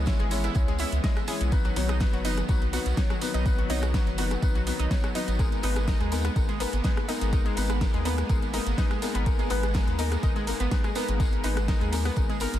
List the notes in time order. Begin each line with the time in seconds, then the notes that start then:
Already playing: C#2 E3 G#3 B3
0.06 G#3 C#4 E4 C#5, kick, snare, closed hi-hat, tambourine
0.19 G#1 G#3, closed hi-hat, tambourine
0.31 G#3 C#4 E4 C#5, open hi-hat, tambourine
0.44 E4, cross-stick, closed hi-hat, tambourine
0.55 C#2 G#3 C#4 E4 C#5, kick, closed hi-hat, tambourine
0.68 G#3, closed hi-hat, tambourine
0.79 G#3 C#4 E4 C#5, open hi-hat, tambourine
0.92 C#2, closed hi-hat, tambourine
1.04 G#3 C#4 E4 D#5, kick, snare, closed hi-hat, tambourine
1.17 cross-stick, closed hi-hat, tambourine
1.28 G#3 C#4 E4 G#4 C#5, open hi-hat, tambourine
1.40 B1, closed hi-hat, tambourine
1.52 D#3 F#3 B3 D#4 B4, kick, closed hi-hat, tambourine
1.65 F#3, closed hi-hat, tambourine
1.76 B1 F#3 B3 D#4 C#5, open hi-hat, tambourine
1.89 D#4, cross-stick, closed hi-hat, tambourine
2.00 F#3 B3 D#4 B4, kick, snare, closed hi-hat, tambourine
2.13 F#1 F#3, closed hi-hat, tambourine
2.25 F#3 B3 D#4 B4, open hi-hat, tambourine
2.37 cross-stick, closed hi-hat, tambourine
2.48 B1 F#3 B3 D#4 B4, kick, closed hi-hat, tambourine
2.62 closed hi-hat, tambourine
2.73 F#3 B3 D#4 F#4 B4, open hi-hat, tambourine
2.86 B1, closed hi-hat, tambourine
2.97 F#3 B3 D#4 C#5, kick, snare, closed hi-hat, tambourine
3.10 F#3, cross-stick, closed hi-hat, tambourine
3.21 F#3 B3 D#4 B4, open hi-hat, tambourine
3.34 B1 D#4, closed hi-hat, tambourine
3.46 F#3 B3 D#4 B4, kick, closed hi-hat, tambourine
3.58 F#3, closed hi-hat, tambourine
3.70 B1 F#3 B3 D#4 C#5, open hi-hat, tambourine
3.83 cross-stick, closed hi-hat, tambourine
3.94 F#3 B3 D#4 B4, kick, snare, closed hi-hat, tambourine
4.07 F#1, closed hi-hat, tambourine
4.18 F#3 B3 D#4 F#4 B4, open hi-hat, tambourine
4.31 cross-stick, closed hi-hat, tambourine
4.42 B1 F#3 B3 D#4 B4, kick, closed hi-hat, tambourine
4.55 F#3, closed hi-hat, tambourine
4.67 F#3 B3 D#4 B4, open hi-hat, tambourine
4.79 B1 D#4, closed hi-hat, tambourine
4.91 F#3 B3 D#4 C#5, kick, snare, closed hi-hat, tambourine
5.03 F#3, cross-stick, closed hi-hat, tambourine
5.15 F#3 B3 D#4 B4, open hi-hat, tambourine
5.27 G#1, closed hi-hat, tambourine
5.39 G#3 A#3 B3 D#4 A#4, kick, closed hi-hat, tambourine
5.52 closed hi-hat, tambourine
5.63 G#1 G#3 B3 D#4 B4, open hi-hat, tambourine
5.76 cross-stick, closed hi-hat, tambourine
5.87 G#3 B3 D#4 A#4, kick, snare, closed hi-hat, tambourine
6.00 D#2 G#3, closed hi-hat, tambourine
6.12 G#3 B3 D#4 A#4, open hi-hat, tambourine
6.25 B3, cross-stick, closed hi-hat, tambourine
6.36 G#1 G#3 B3 D#4 A#4, kick, closed hi-hat, tambourine
6.49 G#3, closed hi-hat, tambourine
6.60 G#3 B3 D#4 A#4, open hi-hat, tambourine
6.73 G#1, closed hi-hat, tambourine
6.84 G#3 B3 D#4 B4, kick, snare, closed hi-hat, tambourine
6.97 cross-stick, closed hi-hat, tambourine
7.08 G#3 B3 D#4 A#4, open hi-hat, tambourine
7.21 G#1, closed hi-hat, tambourine
7.32 G#3 B3 D#4 A#4, kick, closed hi-hat, tambourine
7.46 G#3, closed hi-hat, tambourine
7.57 G#1 G#3 B3 D#4 B4, open hi-hat, tambourine
7.70 B3, cross-stick, closed hi-hat, tambourine
7.81 G#3 B3 D#4 A#4, kick, snare, closed hi-hat, tambourine
7.93 D#2 G#3, closed hi-hat, tambourine
8.05 G#3 B3 D#4 A#4, open hi-hat, tambourine
8.17 cross-stick, closed hi-hat, tambourine
8.29 G#1 G#3 B3 D#4 A#4, kick, closed hi-hat, tambourine
8.42 closed hi-hat, tambourine
8.53 G#3 B3 D#4 A#4, open hi-hat, tambourine
8.67 G#1, closed hi-hat, tambourine
8.78 G#3 B3 D#4 B4, kick, snare, closed hi-hat, tambourine
8.90 G#3, cross-stick, closed hi-hat, tambourine
9.02 G#3 B3 D#4 A#4, open hi-hat, tambourine
9.14 G#1 B3, closed hi-hat, tambourine
9.26 G#3 B3 D#4 A#4, kick, closed hi-hat, tambourine
9.39 G#3, closed hi-hat, tambourine
9.50 G#1 G#3 B3 D#4 B4, open hi-hat, tambourine
9.63 cross-stick, closed hi-hat, tambourine
9.74 G#3 B3 D#4 A#4, kick, snare, closed hi-hat, tambourine
9.87 D#2, closed hi-hat, tambourine
9.99 G#3 B3 D#4 A#4, open hi-hat, tambourine
10.12 cross-stick, closed hi-hat, tambourine
10.23 G#1 G#3 B3 D#4 A#4, kick, closed hi-hat, tambourine
10.36 G#3, closed hi-hat, tambourine
10.47 G#3 B3 D#4 A#4, open hi-hat, tambourine
10.60 G#1 B3, closed hi-hat, tambourine
10.71 G#3 B3 D#4 B4, kick, snare, closed hi-hat, tambourine
10.84 G#3, cross-stick, closed hi-hat, tambourine
10.95 G#3 B3 D#4 A#4, open hi-hat, tambourine
11.08 G#1, closed hi-hat, tambourine
11.20 G#3 B3 D#4 A#4, kick, closed hi-hat, tambourine
11.32 closed hi-hat, tambourine
11.44 G#1 G#3 B3 D#4 B4, open hi-hat, tambourine
11.57 cross-stick, closed hi-hat, tambourine
11.68 G#3 B3 D#4 A#4, kick, snare, closed hi-hat, tambourine
11.81 D#2 G#3, closed hi-hat, tambourine
11.92 G#3 B3 D#4 A#4, open hi-hat, tambourine
12.05 B3, cross-stick, open hi-hat, tambourine
12.16 G#1 G#3 B3 D#4 A#4, kick, closed hi-hat, tambourine
12.30 G#3, closed hi-hat, tambourine
12.40 G#3 B3 D#4 A#4, open hi-hat, tambourine
12.54 G#1, closed hi-hat, tambourine